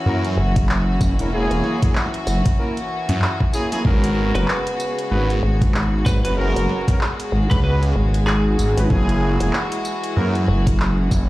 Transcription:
Already playing: string section E3 C#4 F#4
0.06 detuned saw bass F#2, horn section A#3 C#4 E4 A#4
0.25 closed hi-hat
0.38 wobble bass F#1
0.56 kick, closed hi-hat
0.69 clap
1.01 detuned saw bass F#1, kick, snare, tambourine
1.19 detuned saw bass E1, horn section A#3 C#4 E4 A#4, closed hi-hat
1.32 horn section A#3 C#4 E4 G#4
1.51 wobble bass E1, closed hi-hat
1.64 snare
1.82 horn section A#3 C#4 E4 G#4, kick, snare, closed hi-hat
1.85 snare
1.91 snare
1.95 clap, snare
2.02 snare
2.06 snare
2.14 closed hi-hat
2.27 wobble bass F#1, tambourine
2.46 kick, closed hi-hat
2.58 horn section A#3 C#4 E4 A#4
2.77 closed hi-hat
3.09 detuned saw bass F#2, closed hi-hat
3.22 clap
3.40 kick
3.53 horn section A#3 C#4 E4 G#4, tambourine
3.72 horn section A#3 C#4 E4 G#4, snare, closed hi-hat
3.85 detuned saw bass G#1, string section C#3 G#3 B3, horn section B3 C#4 F#4 A#4, kick
4.04 closed hi-hat
4.35 wobble bass F#1, horn section B3 C#4 F#4 A#4, lead electric guitar B4, closed hi-hat
4.48 clap
4.67 closed hi-hat
4.80 tambourine
4.99 closed hi-hat
5.11 detuned saw bass G#1, horn section B3 C#4 F#4 B4
5.30 closed hi-hat
5.43 wobble bass G#1
5.61 kick, closed hi-hat
5.74 clap
6.06 detuned saw bass G#1, lead electric guitar B4, kick, snare, tambourine
6.25 detuned saw bass F#1, horn section B3 C#4 F#4 B4, lead electric guitar B4, closed hi-hat
6.38 horn section B3 C#4 F#4 A#4
6.56 wobble bass F#1, closed hi-hat
6.69 snare
6.88 horn section B3 C#4 F#4 A#4, kick, snare, closed hi-hat
7.01 clap
7.20 closed hi-hat
7.32 wobble bass G#1
7.51 detuned saw bass C#2, lead electric guitar B4, kick, closed hi-hat
7.64 horn section B3 C#4 F#4 B4, lead electric guitar B4
7.83 closed hi-hat
7.96 wobble bass G#1
8.14 closed hi-hat
8.27 lead electric guitar G#4, clap
8.59 detuned saw bass G#1, tambourine
8.77 wobble bass G#1, horn section B3 C#4 F#4 B4, snare, closed hi-hat
8.90 detuned saw bass F#1, string section E3 F#4, horn section A#3 C#4 E4 G#4, kick
9.09 closed hi-hat
9.40 wobble bass E1, horn section A#3 C#4 E4 G#4, closed hi-hat
9.53 clap
9.72 closed hi-hat
9.85 tambourine
10.04 closed hi-hat
10.16 detuned saw bass F#2, horn section A#3 C#4 E4 A#4
10.35 closed hi-hat
10.48 wobble bass F#1
10.67 kick, closed hi-hat
10.80 clap
11.11 detuned saw bass F#1, kick, snare, tambourine

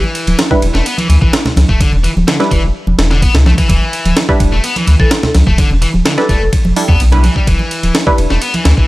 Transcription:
Already playing: distorted electric guitar E3
0.04 muted conga
0.15 ride
0.27 sub bass D1, ride, high conga
0.39 snare, ride
0.51 synth stab G3 D4 E4 B4, kick
0.62 sub bass E1, ride, muted conga
0.74 sub bass E1, distorted electric guitar A3, snare
0.85 distorted electric guitar B3, ride
0.98 distorted electric guitar E3, ride, high conga
1.09 sub bass D2, distorted electric guitar E3, ride, muted conga
1.22 sub bass A1, distorted electric guitar E3, kick
1.33 snare, ride
1.45 snare, low conga
1.56 sub bass C#2, snare, ride, high conga
1.69 sub bass E1, distorted electric guitar A3, kick
1.80 sub bass E1, distorted electric guitar D3, kick, ride
1.93 sub bass E1, muted conga
2.04 distorted electric guitar E3, ride
2.16 sub bass D1, high conga
2.28 distorted electric guitar D3, snare, ride
2.40 synth stab G3 D4 E4 B4, snare
2.51 sub bass E1, distorted electric guitar E3, kick, ride, muted conga
2.63 sub bass E1
2.87 sub bass E1, muted conga, high conga
2.98 sub bass E1, snare, ride
3.11 distorted electric guitar D3, snare
3.22 distorted electric guitar B3, kick, ride
3.34 sub bass C#2, snare, ride, low conga
3.46 sub bass B1, distorted electric guitar A3, snare, high conga
3.58 distorted electric guitar E3, kick, ride
3.69 sub bass E1, distorted electric guitar E3, kick, ride
3.82 muted conga
3.93 ride
4.05 sub bass D1, ride, high conga
4.17 snare, ride
4.29 synth stab G3 D4 E4 B4, kick
4.40 sub bass E1, kick, ride, muted conga
4.52 sub bass E1, distorted electric guitar A3
4.64 distorted electric guitar B3, ride
4.76 distorted electric guitar E3, ride, high conga
4.87 sub bass D2, distorted electric guitar E3, ride, muted conga
4.99 sub bass A1, distorted electric guitar E3, vibraphone A4, kick
5.11 snare, ride
5.23 snare, low conga
5.35 sub bass C#2, snare, ride, high conga
5.47 sub bass E1, distorted electric guitar A3, kick
5.58 sub bass E1, distorted electric guitar D3, kick, ride
5.71 sub bass E1, muted conga
5.82 distorted electric guitar E3, ride
5.94 sub bass D1, high conga
6.06 distorted electric guitar D3, snare, ride
6.18 synth stab G3 D4 E4 B4, vibraphone A4, snare
6.29 sub bass E1, distorted electric guitar A3, vibraphone A4, kick, ride, muted conga
6.41 sub bass E1
6.53 kick, ride
6.65 sub bass E1, muted conga, high conga
6.76 synth stab G3 D4 E4 A4, open hi-hat
6.89 sub bass E2, distorted electric guitar B3, kick
7.00 sub bass B1, ride
7.12 synth stab G3 D4 E4 B4, ride, low conga
7.24 distorted electric guitar E3, ride, high conga
7.36 distorted electric guitar G3, kick
7.47 sub bass E1, distorted electric guitar E3, kick, ride
7.59 muted conga
7.71 ride
7.83 sub bass D1, ride, high conga
7.95 snare, ride
8.07 synth stab G3 D4 E4 B4, kick
8.18 sub bass E1, ride, muted conga
8.30 sub bass E1, distorted electric guitar A3, snare
8.42 distorted electric guitar B3, ride
8.54 distorted electric guitar E3, ride, high conga
8.65 sub bass D2, distorted electric guitar E3, snare, ride, muted conga
8.77 sub bass A1, distorted electric guitar E3, kick

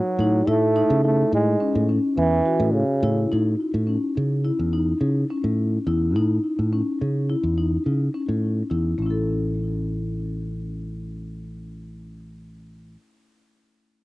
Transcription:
Already playing: trombone F#3, marimba F#4
0.19 fingered electric bass A2, marimba D#4
0.47 fingered electric bass A2, trombone A3, marimba E4
0.76 marimba D#4
0.90 fingered electric bass C#3
1.04 trombone A3
1.32 fingered electric bass A2, trombone G#3
1.60 marimba C#4
1.75 fingered electric bass A2
1.89 marimba C#4
2.17 fingered electric bass E2, trombone E3
2.46 marimba F#4
2.60 fingered electric bass A2
2.74 trombone C#3
3.03 fingered electric bass A2, marimba E4
3.32 fingered electric bass A2, marimba D#4
3.74 fingered electric bass A2
3.87 marimba C#4
4.17 fingered electric bass C#3
4.45 marimba E4
4.59 fingered electric bass E2
4.73 marimba D#4
5.01 fingered electric bass C#3
5.30 marimba C#4
5.44 fingered electric bass A2
5.87 fingered electric bass E2, marimba E4
6.16 fingered electric bass A2, marimba D#4
6.59 fingered electric bass A2
6.73 marimba C#4
7.01 fingered electric bass C#3
7.30 marimba E4
7.43 fingered electric bass E2
7.58 marimba D#4
7.86 fingered electric bass C#3
8.14 marimba C#4
8.29 fingered electric bass A2
8.70 fingered electric bass E2, marimba E4
8.98 fingered electric bass A1, marimba A3
9.02 marimba C#4
9.06 marimba E4
9.10 marimba A4

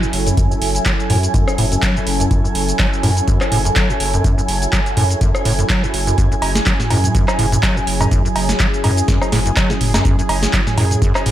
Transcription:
Already playing: analog synth pad F#3 C#4 E4 A4, ambient pad G#5
0.03 acid bass F#2, shaker
0.13 analog synth bass F#1, open hi-hat
0.27 acid bass F#2, closed hi-hat, shaker
0.37 acid bass F#2, kick, closed hi-hat, shaker
0.51 acid bass F#2, shaker
0.61 analog synth bass F#1, open hi-hat
0.75 closed hi-hat, shaker
0.85 acid bass F#3, kick, clap, closed hi-hat, shaker
1.00 shaker
1.10 analog synth bass F#2, acid bass A2, open hi-hat
1.23 closed hi-hat, shaker
1.34 acid bass F#2, kick, closed hi-hat, shaker
1.48 cross-stick, shaker
1.58 analog synth bass F#1, acid bass A2, open hi-hat
1.72 acid bass F#2, closed hi-hat, shaker
1.82 acid bass F#3, kick, clap, closed hi-hat, shaker
1.96 acid bass F#2, shaker
2.07 analog synth bass F#1, open hi-hat
2.20 acid bass F#2, closed hi-hat, shaker
2.31 acid bass F#2, kick, closed hi-hat, shaker
2.44 acid bass F#2, shaker
2.55 analog synth bass F#1, open hi-hat
2.69 closed hi-hat, shaker
2.79 acid bass F#3, kick, clap, closed hi-hat, shaker
2.93 shaker
3.03 analog synth bass F#2, acid bass A2, open hi-hat
3.17 closed hi-hat, shaker
3.28 acid bass F#2, kick, closed hi-hat, shaker
3.41 cross-stick, clap, shaker
3.52 analog synth bass F#1, acid bass A2, open hi-hat
3.65 acid bass F#2, closed hi-hat, shaker
3.76 acid bass F#3, kick, clap, closed hi-hat, shaker
3.90 acid bass F#2, shaker
4.00 analog synth bass F#1, open hi-hat
4.14 acid bass F#2, closed hi-hat, shaker
4.24 acid bass F#2, kick, closed hi-hat, shaker
4.38 acid bass F#2, shaker
4.48 analog synth bass F#1, open hi-hat
4.62 closed hi-hat, shaker
4.72 acid bass F#3, kick, clap, closed hi-hat, shaker
4.86 closed hi-hat, shaker
4.97 analog synth bass F#2, acid bass A2, open hi-hat
5.10 closed hi-hat, shaker
5.21 acid bass F#2, kick, closed hi-hat, shaker
5.35 cross-stick, shaker
5.45 analog synth bass F#1, acid bass A2, open hi-hat
5.59 acid bass F#2, closed hi-hat, shaker
5.69 acid bass F#3, kick, clap, closed hi-hat, shaker
5.83 acid bass F#2, shaker
5.94 analog synth bass F#1, open hi-hat
6.07 acid bass F#2, closed hi-hat, shaker
6.18 acid bass F#2, analog synth pad G#4, kick, closed hi-hat, shaker
6.31 acid bass F#2, shaker
6.42 analog synth bass F#1, open hi-hat, cowbell
6.55 snare, closed hi-hat, shaker
6.66 acid bass F#3, kick, clap, closed hi-hat, shaker
6.80 snare, mid tom, shaker
6.90 analog synth bass F#2, acid bass A2, open hi-hat, cowbell
7.04 closed hi-hat, mid tom, shaker
7.15 acid bass F#2, kick, closed hi-hat, shaker
7.28 cross-stick, clap, cowbell, shaker
7.39 analog synth bass F#1, acid bass A2, open hi-hat
7.52 acid bass F#2, closed hi-hat, mid tom, shaker
7.63 acid bass F#3, kick, clap, closed hi-hat, cowbell, shaker
7.76 acid bass F#2, shaker
7.87 analog synth bass F#1, open hi-hat
8.01 acid bass F#2, closed hi-hat, mid tom, cowbell, shaker
8.11 acid bass F#2, kick, closed hi-hat, shaker
8.25 acid bass F#2, shaker
8.36 analog synth bass F#1, open hi-hat, cowbell
8.49 snare, closed hi-hat, shaker
8.59 acid bass F#3, kick, clap, closed hi-hat, shaker
8.74 shaker
8.84 analog synth bass F#2, acid bass A2, open hi-hat, cowbell
8.97 closed hi-hat, shaker
9.08 acid bass F#2, kick, snare, closed hi-hat, shaker
9.22 cross-stick, cowbell, shaker
9.32 analog synth bass F#1, acid bass A2, snare, open hi-hat
9.46 acid bass F#2, closed hi-hat, shaker
9.56 acid bass F#3, kick, clap, closed hi-hat, cowbell, shaker
9.70 acid bass F#2, snare, shaker
9.81 analog synth bass F#1, mid tom, open hi-hat
9.94 acid bass F#2, snare, closed hi-hat, cowbell, shaker
10.05 acid bass F#2, kick, closed hi-hat, shaker
10.19 acid bass F#2, shaker
10.29 analog synth bass F#1, open hi-hat, cowbell
10.43 snare, closed hi-hat, shaker
10.53 acid bass F#3, kick, clap, closed hi-hat, shaker
10.67 snare, mid tom, shaker
10.78 analog synth bass F#2, acid bass A2, open hi-hat, cowbell
10.91 closed hi-hat, mid tom, shaker
11.02 acid bass F#2, kick, closed hi-hat, shaker
11.15 cross-stick, clap, cowbell, shaker
11.26 analog synth bass F#1, acid bass A2, open hi-hat

